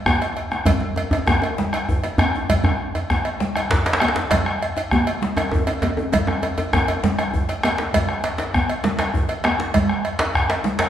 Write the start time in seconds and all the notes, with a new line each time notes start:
0.06 bombo rim, bombo low, high conga, djembe bass
0.21 bombo rim, cowbell, djembe slap
0.37 bombo rim, cowbell, djembe slap
0.51 bombo rim, djembe tone, high conga
0.66 bombo low, cowbell, djembe slap, djembe bass, low conga
0.81 djembe tone
0.96 bombo rim, cowbell, djembe slap, djembe tone, high conga
1.11 bombo rim, cowbell, djembe slap, djembe tone, djembe bass
1.27 bombo rim, bombo low, djembe slap, djembe tone, high conga, djembe bass
1.42 cowbell, djembe slap, djembe tone, high conga
1.58 djembe slap, low conga
1.73 bombo rim, cowbell, djembe tone
1.89 bombo low, djembe bass
2.04 cowbell, djembe slap, high conga
2.18 bombo rim, cowbell, high conga, djembe bass
2.34 bombo rim, djembe tone
2.49 bombo low, cowbell, djembe slap, low conga, djembe bass
2.64 bombo rim, djembe bass
2.80 bombo rim, djembe slap, high conga
2.95 bombo rim, cowbell, djembe slap, djembe tone
3.10 bombo rim, bombo low, djembe slap, high conga, djembe bass
3.25 cowbell, djembe slap, high conga
3.40 djembe slap, low conga
3.56 bombo rim, cowbell, djembe tone
3.70 bombo low, djembe slap, djembe bass
3.86 cowbell, djembe slap, high conga
3.93 djembe slap
4.00 bombo rim, cowbell, high conga
4.08 djembe slap
4.16 bombo rim, djembe slap, djembe tone
4.31 bombo low, cowbell, djembe slap, djembe bass, low conga
4.46 bombo rim
4.62 bombo rim, cowbell, djembe slap, high conga
4.76 bombo rim, cowbell, djembe slap, djembe tone
4.91 bombo rim, bombo low, djembe slap, high conga, djembe bass
5.07 cowbell, djembe slap, high conga
5.22 djembe slap, low conga
5.37 bombo rim, cowbell, djembe tone
5.51 bombo low, djembe tone, djembe bass
5.67 cowbell, djembe slap, djembe tone, high conga
5.82 cowbell, djembe tone, high conga
5.97 bombo rim, djembe tone
6.12 bombo low, cowbell, djembe slap, djembe tone, djembe bass, low conga
6.27 bombo rim, djembe slap, djembe tone
6.43 cowbell, djembe slap, djembe tone
6.58 cowbell, djembe slap, djembe tone
6.73 bombo rim, bombo low, djembe tone, high conga, djembe bass
6.88 bombo rim, cowbell, djembe tone
7.04 bombo rim, djembe slap, djembe tone, low conga
7.19 bombo rim, cowbell, djembe tone
7.33 bombo low, djembe bass
7.49 cowbell, djembe slap, high conga
7.63 bombo rim, cowbell, djembe slap, high conga
7.78 djembe slap, djembe tone, high conga
7.93 bombo low, cowbell, djembe slap, djembe bass, low conga
8.09 bombo rim
8.24 bombo rim, cowbell, djembe slap, high conga
8.38 bombo rim, cowbell, djembe slap, djembe tone
8.54 bombo rim, bombo low, djembe slap, high conga, djembe bass
8.69 cowbell, djembe slap, high conga
8.84 djembe slap, low conga
8.99 bombo rim, cowbell, djembe slap, djembe tone
9.14 bombo low, djembe bass
9.29 cowbell, djembe slap, high conga
9.44 bombo rim, cowbell, djembe slap, high conga
9.59 bombo rim, djembe slap, djembe tone
9.74 bombo low, cowbell, djembe slap, djembe bass, low conga
9.89 bombo rim
10.04 bombo rim, cowbell, djembe slap
10.19 bombo rim, cowbell, djembe slap, djembe tone
10.34 bombo rim, bombo low, djembe slap, djembe bass
10.50 cowbell, djembe slap, high conga
10.64 djembe slap, low conga
10.79 bombo rim, cowbell, djembe slap, djembe tone